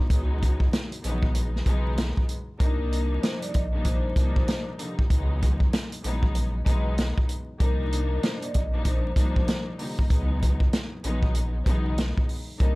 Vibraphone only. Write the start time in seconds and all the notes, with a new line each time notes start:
2.61 A#4
2.92 A#4
3.22 C5
3.42 D5
3.55 D#5
3.85 C5
4.36 C5
7.60 A#4
7.92 A#4
8.23 C5
8.42 D5
8.54 D#5
8.86 C5
9.36 C5
12.61 A#4